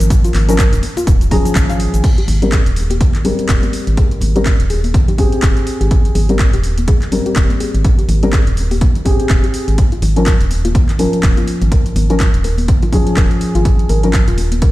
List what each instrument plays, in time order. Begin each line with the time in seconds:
Already playing: felt piano F3 C#4 A#4
0.00 fm bass G#1, closed hi-hat, cabasa
0.10 kick, closed hi-hat, cabasa
0.24 synth arpeggio sound F4, closed hi-hat, cabasa
0.34 fm bass G#1, clap, open hi-hat, high conga
0.48 felt piano F3 C#4 A#4, closed hi-hat, cabasa
0.59 synth arpeggio sound A#4, kick, clap, closed hi-hat, cabasa
0.72 fm bass D#1, closed hi-hat, low conga, cabasa
0.83 open hi-hat, muted conga
0.97 synth arpeggio sound F4, open hi-hat, muted conga, high conga, cabasa
1.07 fm bass D#1, kick, closed hi-hat, cabasa
1.21 closed hi-hat, cabasa
1.31 felt piano F3 C#4 G#4, synth arpeggio sound A#5, kick, open hi-hat, muted conga
1.45 closed hi-hat, low conga, cabasa
1.55 fm bass G#1, kick, clap, closed hi-hat, cabasa
1.69 synth arpeggio sound F5, closed hi-hat, low conga, cabasa
1.80 open hi-hat
1.94 fm bass G#1, closed hi-hat, cabasa
2.04 kick, closed hi-hat, crash
2.18 synth arpeggio sound G4, closed hi-hat
2.28 fm bass G#1, open hi-hat, high conga, low conga
2.42 felt piano G3 C4 A#4, closed hi-hat
2.52 synth arpeggio sound G#4, kick, clap, closed hi-hat
2.66 fm bass D#1, closed hi-hat
2.76 open hi-hat
2.90 synth arpeggio sound G4, closed hi-hat, high conga
3.01 fm bass G#1, kick, closed hi-hat
3.15 clap, closed hi-hat
3.24 felt piano G3 C4 A#4, synth arpeggio sound G#4, open hi-hat
3.39 closed hi-hat
3.49 fm bass D#1, kick, clap, closed hi-hat
3.63 synth arpeggio sound G4, closed hi-hat, high conga
3.73 open hi-hat
3.87 fm bass G#1, closed hi-hat
3.97 synth arpeggio sound G#4, kick, closed hi-hat
4.11 closed hi-hat
4.21 fm bass G#1, open hi-hat, high conga, low conga
4.36 felt piano G3 C4 A#4, synth arpeggio sound G4, closed hi-hat
4.46 kick, clap, closed hi-hat
4.60 fm bass D#1, closed hi-hat
4.70 synth arpeggio sound G#4, open hi-hat
4.84 open hi-hat, high conga
4.94 fm bass G#1, kick, closed hi-hat
5.08 synth arpeggio sound G4, closed hi-hat, low conga
5.18 felt piano C4 G4 G#4, kick, open hi-hat
5.32 closed hi-hat
5.42 fm bass D#1, synth arpeggio sound G#4, kick, clap, closed hi-hat
5.57 closed hi-hat
5.67 open hi-hat
5.81 fm bass G#1, synth arpeggio sound G4, closed hi-hat
5.91 kick, closed hi-hat
6.05 closed hi-hat
6.15 fm bass G#1, synth arpeggio sound G#4, open hi-hat, high conga, low conga
6.29 felt piano G3 C4 A#4, closed hi-hat
6.39 kick, clap, closed hi-hat
6.53 fm bass D#1, synth arpeggio sound G4, closed hi-hat
6.64 open hi-hat
6.78 closed hi-hat, high conga
6.88 fm bass G#1, synth arpeggio sound G#4, kick, closed hi-hat
7.02 clap, closed hi-hat
7.11 felt piano G3 C4 A#4, open hi-hat
7.26 synth arpeggio sound G4, closed hi-hat
7.36 fm bass D#1, kick, clap, closed hi-hat
7.50 closed hi-hat, high conga
7.60 synth arpeggio sound G#4, open hi-hat
7.74 fm bass G#1, closed hi-hat
7.85 kick, closed hi-hat
7.99 synth arpeggio sound G4, closed hi-hat
8.08 fm bass G#1, open hi-hat, high conga, low conga
8.23 felt piano G3 C4 A#4, closed hi-hat
8.33 synth arpeggio sound G#4, kick, clap, closed hi-hat
8.47 fm bass D#1, closed hi-hat
8.57 open hi-hat
8.71 synth arpeggio sound G4, open hi-hat, high conga
8.81 fm bass G#1, kick, closed hi-hat
8.95 closed hi-hat, low conga
9.05 felt piano C4 G4 G#4, synth arpeggio sound G#4, kick, open hi-hat
9.20 closed hi-hat
9.30 fm bass D#1, kick, clap, closed hi-hat
9.44 synth arpeggio sound G4, closed hi-hat
9.54 open hi-hat
9.68 fm bass G#1, closed hi-hat
9.78 kick, closed hi-hat
9.92 synth arpeggio sound F4, closed hi-hat
10.02 fm bass G#1, open hi-hat, muted conga, high conga, low conga
10.16 felt piano F3 C#4 A#4, closed hi-hat
10.26 synth arpeggio sound A#4, kick, clap, closed hi-hat
10.41 fm bass D#1, closed hi-hat
10.51 open hi-hat, muted conga
10.65 synth arpeggio sound F4, closed hi-hat, high conga
10.75 fm bass G#1, kick, closed hi-hat
10.89 clap, closed hi-hat
10.98 felt piano F3 C#4 A#4, synth arpeggio sound A#4, open hi-hat, muted conga
11.13 closed hi-hat
11.23 fm bass D#1, kick, clap, closed hi-hat
11.37 synth arpeggio sound F4, closed hi-hat, high conga
11.48 open hi-hat
11.62 fm bass G#1, closed hi-hat, muted conga
11.72 synth arpeggio sound A#4, kick, closed hi-hat
11.86 closed hi-hat
11.96 fm bass G#1, open hi-hat, muted conga, high conga, low conga
12.10 felt piano F3 C#4 A#4, synth arpeggio sound F4, closed hi-hat
12.20 kick, clap, closed hi-hat
12.34 fm bass D#1, closed hi-hat
12.44 synth arpeggio sound A#4, open hi-hat, muted conga
12.58 open hi-hat, high conga
12.68 fm bass G#1, kick, closed hi-hat
12.82 synth arpeggio sound F4, closed hi-hat, low conga
12.92 felt piano F3 C#4 G#4, kick, open hi-hat
13.07 closed hi-hat
13.17 fm bass D#1, synth arpeggio sound A#4, kick, clap, closed hi-hat
13.31 closed hi-hat
13.41 open hi-hat
13.55 fm bass G#1, synth arpeggio sound F4, closed hi-hat
13.65 kick, closed hi-hat
13.79 closed hi-hat
13.89 fm bass G#1, synth arpeggio sound A#4, open hi-hat, muted conga, high conga, low conga
14.03 felt piano F3 C#4 A#4, closed hi-hat
14.13 kick, clap, closed hi-hat
14.28 fm bass D#1, synth arpeggio sound F4, closed hi-hat
14.38 open hi-hat, muted conga
14.52 closed hi-hat, high conga
14.62 fm bass G#1, synth arpeggio sound A#4, kick, closed hi-hat